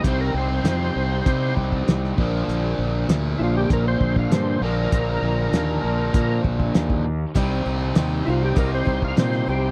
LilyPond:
<<
  \new Staff \with { instrumentName = "Tonewheel organ" } { \time 4/4 \key c \minor \tempo 4 = 98 c''16 bes'16 c''2 r4. | r4. <e' f'>16 g'16 bes'16 c''8 f''16 c''8 bes'8~ | bes'2~ bes'8 r4. | r4. <e' f'>16 g'16 bes'16 c''8 f''16 c''8 <g' c''>8 | }
  \new Staff \with { instrumentName = "Steel-string acoustic guitar" } { \time 4/4 \key c \minor r1 | r1 | r1 | <c g c' ees' g'>8 <c' ees' g'>8 <g c' ees' g'>8 <c' ees' g'>8 <c g c' ees' g'>8 <c' ees' g'>8 <g c' ees' g'>8 <c' ees' g'>8 | }
  \new Staff \with { instrumentName = "Overdriven electric guitar" } { \clef bass \time 4/4 \key c \minor <c g c' ees' g'>2 <c g c' ees' g'>4. <bes, d f bes d'>8~ | <bes, d f bes d'>4. <bes, d f bes d'>2 <bes, d f bes d'>8~ | <bes, d f bes d'>4. <bes, d f bes d'>2 r8 | <c g c' ees'>2 <c g c' ees'>2 | }
  \new Staff \with { instrumentName = "Distorted electric guitar" } { \clef bass \time 4/4 \key c \minor <c g c'>2.~ <c g c'>8 <bes, f bes>8~ | <bes, f bes>2.~ <bes, f bes>8 <bes, f bes>8~ | <bes, f bes>2.~ <bes, f bes>8 r8 | <c g c'>1 | }
  \new Staff \with { instrumentName = "Fingered electric bass" } { \clef bass \time 4/4 \key c \minor c,8 c,8 f,8 c,8 c8 c,8 c,8 bes,,8 | bes,,8 bes,,8 d,8 bes,,8 bes,,8 bes,,8 g,8 bes,,8 | bes,,8 bes,,8 ees,8 bes,,8 bes,8 bes,,8 ees,4 | c,8 c,8 ees,8 c,8 c,8 c,8 bes,8 c,8 | }
  \new DrumStaff \with { instrumentName = "Drums" } \drummode { \time 4/4 <hh bd>4 <hh sn>4 <hh bd>8 bd16 bd16 <hh sn>16 sn16 bd8 | hh4 <hh sn>4 <hh bd>8 bd16 bd16 <hh sn>4 | <hh bd>4 <hh sn>4 <hh bd>8 bd16 bd16 <hh sn>16 bd8. | <hh bd>4 <hh sn>4 <hh bd>8 bd16 bd16 <hh sn>16 sn8. | }
>>